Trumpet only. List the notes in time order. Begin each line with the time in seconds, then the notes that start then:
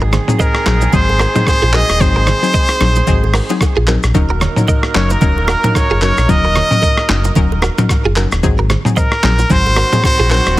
0.41 A#4
0.95 C5
1.48 C5
1.75 D#5
2.02 C5
4.96 C#5
5.12 A#4
5.50 A#4
5.76 C#5
6.03 C#5
6.30 D#5
8.98 A#4
9.52 C5
10.05 C5
10.32 C5